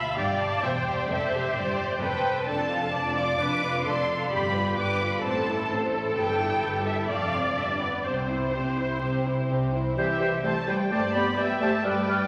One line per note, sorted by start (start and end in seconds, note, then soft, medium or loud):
0.00 0.13 D2 soft
0.00 0.13 D2 medium
0.00 0.16 F4 soft
0.00 0.16 E5 medium
0.00 0.60 F5 soft
0.00 0.15 B5 medium
0.16 0.59 G1 medium
0.16 0.59 G2 medium
0.16 0.61 G4 soft
0.16 0.62 D5 medium
0.16 0.39 G5 medium
0.39 0.62 A5 medium
0.62 1.06 E1 medium
0.62 1.05 E2 medium
0.62 1.08 G4 soft
0.62 1.09 C5 medium
0.62 0.70 E5 soft
0.62 1.09 G5 medium
0.86 1.54 D5 soft
1.08 1.51 F1 medium
1.08 1.51 F2 medium
1.08 1.32 A4 medium
1.08 1.99 C5 medium
1.08 1.54 E5 medium
1.32 1.53 G4 medium
1.54 1.98 G1 medium
1.54 1.97 G2 medium
1.54 1.99 G4 soft
1.54 2.00 C5 soft
1.54 2.01 D5 medium
2.00 2.44 F1 medium
2.00 2.43 F2 medium
2.00 2.47 A4 soft
2.00 2.46 B4 medium
2.00 2.46 C5 soft
2.00 2.45 G5 medium
2.46 2.87 F1 medium
2.46 2.87 F2 medium
2.46 2.69 D4 soft
2.46 2.92 A4 medium
2.46 2.68 D5 soft
2.46 3.15 A5 medium
2.70 2.93 F4 soft
2.70 2.93 F5 soft
2.92 3.34 F1 medium
2.92 3.34 F2 medium
2.92 3.17 D4 soft
2.92 3.39 D5 medium
2.92 3.17 D5 soft
3.17 3.40 F4 soft
3.17 3.40 F5 soft
3.17 3.84 D6 medium
3.39 3.80 F1 medium
3.39 3.80 F2 medium
3.39 3.61 D4 soft
3.39 3.86 B4 medium
3.39 3.60 D5 soft
3.61 3.85 F4 soft
3.61 3.85 F5 soft
3.85 4.26 F1 soft
3.85 4.26 F2 medium
3.85 4.08 D4 soft
3.85 4.32 A4 medium
3.85 4.08 D5 soft
3.85 4.31 C6 medium
4.07 4.31 F4 soft
4.07 4.31 F5 soft
4.30 4.72 G1 medium
4.30 4.73 G2 medium
4.30 4.53 G4 soft
4.30 4.78 G4 medium
4.30 4.52 D5 soft
4.30 4.77 B5 medium
4.53 4.77 F4 soft
4.53 4.77 B4 soft
4.77 5.18 G1 medium
4.77 5.18 G2 medium
4.77 5.01 G4 soft
4.77 5.23 B4 medium
4.77 5.01 D5 soft
4.77 5.11 D6 medium
5.01 5.24 F4 soft
5.01 5.24 B4 soft
5.12 5.23 B5 medium
5.23 5.64 A1 medium
5.23 5.64 A2 medium
5.23 5.45 C4 soft
5.23 7.06 A4 medium
5.23 5.46 C5 soft
5.23 5.69 A5 medium
5.48 5.71 E4 soft
5.48 5.71 A4 soft
5.70 6.11 A1 medium
5.70 6.11 A2 medium
5.70 5.94 C4 soft
5.70 5.94 C5 soft
5.94 6.17 E4 soft
5.94 6.17 A4 soft
6.15 6.57 G1 soft
6.15 6.57 G2 medium
6.15 6.38 G4 soft
6.15 6.38 B4 soft
6.15 6.82 G5 medium
6.40 6.63 E4 soft
6.40 6.62 G4 soft
6.62 7.04 G1 soft
6.62 7.04 G2 soft
6.62 6.85 G4 soft
6.62 6.86 B4 soft
6.86 7.10 E4 soft
6.86 7.10 G4 soft
6.86 7.09 E5 medium
7.09 7.51 F1 soft
7.09 7.51 F2 soft
7.09 7.32 A3 soft
7.09 7.31 A4 soft
7.09 8.03 D5 medium
7.09 7.56 F5 medium
7.34 7.57 C4 soft
7.34 7.57 C5 soft
7.56 7.99 G1 soft
7.56 7.99 G2 soft
7.56 7.79 D4 soft
7.56 7.79 G4 soft
7.56 7.65 E5 medium
7.79 8.05 B3 soft
7.79 8.05 B4 soft
7.79 7.87 D5 soft
8.04 8.48 C2 soft
8.04 8.48 C3 soft
8.04 8.28 C4 soft
8.04 8.28 G4 soft
8.04 9.46 C5 medium
8.04 9.73 C5 soft
8.28 8.53 E4 soft
8.28 8.53 C5 soft
8.53 8.96 C2 soft
8.53 8.96 C3 soft
8.53 8.77 C4 soft
8.53 8.77 G4 soft
8.78 9.02 E4 soft
8.78 9.02 C5 soft
9.01 9.44 C2 soft
9.01 9.43 C3 soft
9.01 9.24 C4 soft
9.01 9.24 G4 soft
9.25 9.49 E4 soft
9.25 9.49 C5 soft
9.49 9.92 C2 soft
9.49 9.92 C3 soft
9.49 9.74 C4 soft
9.49 9.74 G4 soft
9.74 9.98 E4 soft
9.74 9.98 C5 soft
9.96 10.37 C2 soft
9.96 10.41 E3 medium
9.96 10.42 E3 medium
9.96 10.09 G3 soft
9.96 10.08 G4 soft
9.96 10.42 G4 soft
9.96 10.08 C5 soft
9.96 10.41 E5 medium
9.96 10.04 G6 soft
10.20 10.31 G3 soft
10.20 10.32 G4 soft
10.20 10.32 C5 soft
10.20 10.27 G6 soft
10.44 10.55 G3 soft
10.44 10.68 A3 medium
10.44 10.69 A3 medium
10.44 10.56 G4 soft
10.44 10.53 C5 medium
10.44 10.56 C5 soft
10.44 10.69 A5 medium
10.44 10.51 G6 soft
10.67 10.91 G3 soft
10.67 10.78 G3 soft
10.67 10.91 G3 soft
10.67 10.79 G4 soft
10.67 10.76 B4 soft
10.67 10.79 C5 soft
10.67 10.92 G5 medium
10.67 10.73 G6 soft
10.91 11.31 G2 soft
10.91 11.02 G3 soft
10.91 11.02 A3 medium
10.91 11.15 A3 medium
10.91 11.03 G4 soft
10.91 11.15 C5 medium
10.91 11.02 D5 soft
10.91 11.35 D5 medium
10.91 11.15 A5 medium
10.91 10.97 G6 soft
11.14 11.25 G3 soft
11.14 11.38 B3 medium
11.14 11.23 B3 medium
11.14 11.26 G4 soft
11.14 11.25 D5 soft
11.14 11.39 D5 medium
11.14 11.37 B5 medium
11.14 11.21 G6 soft
11.36 11.47 G3 medium
11.36 11.48 G3 soft
11.36 11.46 G3 medium
11.36 11.49 G4 soft
11.36 11.62 B4 medium
11.36 11.49 D5 soft
11.36 11.83 E5 medium
11.36 11.61 G5 medium
11.36 11.43 G6 soft
11.60 11.71 G3 soft
11.60 11.83 A3 medium
11.60 11.84 A3 soft
11.60 11.73 G4 soft
11.60 11.70 C5 medium
11.60 11.72 D5 soft
11.60 11.84 A5 medium
11.60 11.66 G6 soft
11.82 12.23 G2 medium
11.82 12.27 G3 medium
11.82 11.95 G3 soft
11.82 11.95 G4 soft
11.82 11.95 B4 soft
11.82 12.27 B4 soft
11.82 12.27 D5 medium
11.82 12.27 G5 medium
11.82 11.90 F6 soft
12.06 12.17 G3 soft
12.06 12.18 G4 soft
12.06 12.19 B4 soft
12.06 12.14 F6 soft